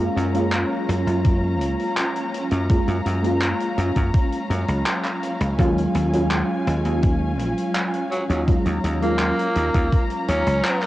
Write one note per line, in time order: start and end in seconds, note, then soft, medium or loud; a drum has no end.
0.00 10.86 F#3 medium
0.00 0.30 G#3 loud
0.00 0.30 A#3 medium
0.00 0.30 C#4 medium
0.00 10.86 C#4 medium
0.00 0.31 F4 loud
0.00 10.86 F5 medium
0.00 5.55 A#5 medium
0.16 0.63 F#2 medium
0.16 closed hi-hat medium
0.34 0.55 G#3 medium
0.34 0.56 A#3 medium
0.34 0.56 C#4 medium
0.34 0.56 F4 loud
0.34 closed hi-hat medium
0.52 clap loud
0.52 closed hi-hat medium
0.89 1.02 F#2 medium
0.89 closed hi-hat medium
1.07 1.61 F#2 medium
1.07 closed hi-hat medium
1.25 kick loud
1.25 closed hi-hat medium
1.61 1.74 C#2 loud
1.61 closed hi-hat medium
1.79 closed hi-hat medium
1.97 clap loud
1.97 closed hi-hat loud
2.16 closed hi-hat soft
2.34 closed hi-hat medium
2.51 2.78 F#2 medium
2.51 closed hi-hat medium
2.69 3.19 G#3 medium
2.69 3.19 A#3 medium
2.69 3.20 C#4 medium
2.69 3.20 F4 medium
2.69 kick loud
2.69 closed hi-hat medium
2.88 3.01 F#2 medium
2.88 closed hi-hat soft
3.06 3.52 F#2 medium
3.06 closed hi-hat medium
3.22 5.54 G#3 medium
3.22 5.54 A#3 medium
3.22 5.55 C#4 medium
3.22 5.55 F4 medium
3.22 closed hi-hat medium
3.42 clap loud
3.42 closed hi-hat medium
3.60 closed hi-hat medium
3.78 3.91 F#2 medium
3.78 closed hi-hat medium
3.96 4.09 F#2 medium
3.96 kick medium
3.96 closed hi-hat medium
4.14 kick loud
4.14 closed hi-hat medium
4.32 closed hi-hat medium
4.50 4.64 F#2 medium
4.50 closed hi-hat medium
4.68 4.82 C#2 medium
4.68 closed hi-hat medium
4.86 clap loud
4.86 closed hi-hat medium
5.04 clap soft
5.04 closed hi-hat medium
5.23 closed hi-hat medium
5.41 5.54 C#2 loud
5.41 closed hi-hat medium
5.58 5.85 D#2 medium
5.58 6.09 F#3 loud
5.58 6.09 G#3 medium
5.58 6.09 C#4 medium
5.58 6.09 F4 loud
5.58 8.45 G#5 medium
5.58 kick loud
5.58 closed hi-hat medium
5.78 closed hi-hat medium
5.95 6.42 D#2 medium
5.95 closed hi-hat medium
6.13 6.34 F#3 medium
6.13 6.34 G#3 medium
6.13 6.34 C#4 medium
6.13 6.35 F4 loud
6.13 closed hi-hat medium
6.31 clap loud
6.31 closed hi-hat medium
6.67 6.81 D#2 medium
6.67 closed hi-hat medium
6.85 7.39 D#2 medium
6.85 closed hi-hat medium
7.03 kick loud
7.03 closed hi-hat medium
7.39 7.53 A#1 loud
7.39 closed hi-hat medium
7.58 closed hi-hat medium
7.75 clap loud
7.75 closed hi-hat medium
7.94 closed hi-hat soft
8.12 8.23 F#3 medium
8.12 closed hi-hat medium
8.30 8.56 D#2 loud
8.30 8.41 F#3 medium
8.30 closed hi-hat medium
8.47 8.98 F#3 medium
8.47 8.98 G#3 medium
8.47 8.98 C#4 medium
8.47 8.98 F4 medium
8.47 10.86 A#5 medium
8.47 kick loud
8.47 closed hi-hat medium
8.66 8.79 D#2 medium
8.66 closed hi-hat medium
8.84 9.31 D#2 medium
8.84 closed hi-hat medium
9.01 10.86 F#3 medium
9.01 10.86 G#3 medium
9.01 10.04 A#3 loud
9.01 10.86 C#4 medium
9.01 10.86 F4 medium
9.01 closed hi-hat medium
9.19 clap loud
9.19 closed hi-hat medium
9.39 closed hi-hat medium
9.55 9.70 D#2 medium
9.55 closed hi-hat medium
9.74 9.88 D#2 medium
9.74 kick medium
9.74 closed hi-hat medium
9.92 kick loud
9.92 closed hi-hat medium
10.10 closed hi-hat medium
10.28 10.42 D#2 medium
10.28 10.86 C#4 loud
10.28 closed hi-hat medium
10.46 10.60 C#2 loud
10.46 closed hi-hat medium
10.64 clap loud
10.64 closed hi-hat medium
10.82 clap soft
10.82 closed hi-hat medium